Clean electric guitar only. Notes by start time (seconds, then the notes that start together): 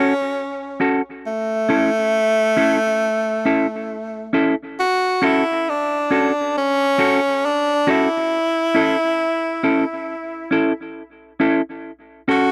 Already playing: C#4 F#4 A4
0.80 C#4 F#4 A4
1.69 C#4 E4 A4
2.57 C#4 E4 A4
3.45 C#4 E4 A4
4.33 C#4 E4 A4
5.22 C#4 F#4 A4
6.11 C#4 F#4 A4
6.98 C#4 F#4 A4
7.87 C#4 F#4 A4
8.75 C#4 E4 A4
9.63 C#4 E4 A4
10.51 C#4 E4 A4
11.40 C#4 E4 A4
12.28 C#4 F#4 A4